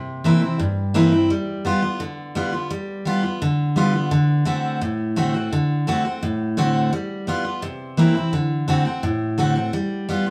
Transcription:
Already playing: C3
0.24 E3 A#3 C4 E4
0.42 C4 E4
0.59 G2
0.94 E3 A#3 C4 E4
1.12 C4 E4
1.30 G3
1.65 G3 B3 F4
1.82 B3 F4
2.00 D3
2.35 G3 B3 F4
2.52 B3 F4
2.70 G3
3.05 G3 B3 F4
3.23 B3 F4
3.42 D3
3.76 G3 B3 F4
3.94 B3 F4
4.11 D3
4.45 D3 A3 C4 F#4
4.81 A2
5.16 D3 A3 C4 F#4
5.34 C4 F#4
5.53 D3
5.87 D3 A3 C4 F#4
6.05 C4 F#4
6.23 A2
6.57 D3 A3 C4 F#4
6.93 G3
7.27 G3 B3 F4
7.45 B3 F4
7.62 C3
7.97 E3 A#3 C4 E4
8.15 C4 E4
8.33 D3
8.68 D3 A3 C4 F#4
8.85 C4 F#4
9.03 A2
9.38 D3 A3 C4 F#4
9.55 C4 F#4
9.73 G3
10.09 G3 B3 F4
10.26 F4

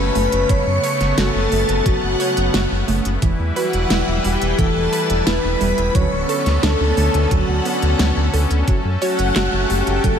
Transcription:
Already playing: C#3 A3 C#4 B4 B5
0.00 F#1
0.15 F#1 A3, open hi-hat
0.32 F#1, closed hi-hat
0.49 F#1 F#3 B3 C#5 C#6, kick, closed hi-hat
0.67 F#2
0.84 C#5, open hi-hat
1.01 F#1, snare, closed hi-hat
1.17 F#1 F#4 A4 A5, snare, closed hi-hat
1.35 F#1
1.52 F#1 A3, open hi-hat
1.69 F#1, closed hi-hat
1.86 F#1 F#3 F#4 F#5, kick, closed hi-hat
2.03 F#1
2.20 C#5, open hi-hat
2.37 F#1, closed hi-hat
2.54 F#1 F#4, snare, closed hi-hat
2.71 F#1
2.88 F#1 A3, open hi-hat
3.05 F#1, closed hi-hat
3.22 E1 E3 G3 E4 B4, kick, closed hi-hat
3.39 E2
3.56 F#4 B4 F#5, open hi-hat
3.73 E1, closed hi-hat
3.90 E1 E4, snare, closed hi-hat
4.08 E1
4.24 E1 G3 G4 G5, open hi-hat
4.42 E1, closed hi-hat
4.59 E1 E3 A4 A5, kick, closed hi-hat
4.76 E1
4.93 B4, open hi-hat
5.10 E1, closed hi-hat
5.27 E1 E4 B4 B5, snare, closed hi-hat
5.44 E1
5.61 E1 G3, open hi-hat
5.78 E1, closed hi-hat
5.95 D2 D3 F#3 B3 C#4 A4 C#5 C#6, kick, closed hi-hat
6.12 D1
6.29 A4, open hi-hat
6.46 D2, snare, closed hi-hat
6.63 D2 D4 A4 A5, snare, closed hi-hat
6.80 D2
6.97 D2 A3, open hi-hat
7.14 D2, closed hi-hat
7.31 D2 F#3 F#4 F#5, kick, closed hi-hat
7.48 D2
7.65 B3, open hi-hat
7.82 D2, closed hi-hat
7.99 D2 F#3, snare, closed hi-hat
8.17 D2
8.34 D2 A4, open hi-hat
8.51 D2, closed hi-hat
8.68 F#1 F#3 A3 A4, kick, closed hi-hat
8.85 F#2
9.02 F#4 C#5 F#5, open hi-hat
9.19 F#1, closed hi-hat
9.36 F#1 F#4, snare, clap, closed hi-hat
9.53 F#1
9.70 F#1 A3 G4 G5, open hi-hat
9.87 F#1, closed hi-hat
10.04 F#1 F#3 A4 A5, kick, closed hi-hat

